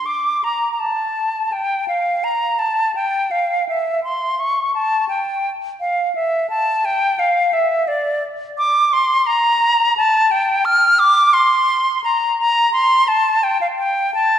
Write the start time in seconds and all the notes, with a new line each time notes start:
0.06 D6
0.44 A#5
0.72 A#5
0.80 A5
1.52 G5
1.88 F5
2.24 A#5
2.59 A5
2.95 G5
3.31 F5
3.69 E5
4.04 C6
4.40 C#6
4.74 A5
5.09 G5
5.80 F5
6.15 E5
6.50 A5
6.85 G5
7.19 F5
7.53 E5
7.88 D5
8.58 D6
8.93 C6
9.27 A#5
9.97 A5
10.31 G5
10.65 F6
10.99 D6
11.33 C6
12.04 A#5
12.39 A#5
12.73 C6
13.08 A5
13.43 G5
13.61 F5
13.78 G5
14.14 A5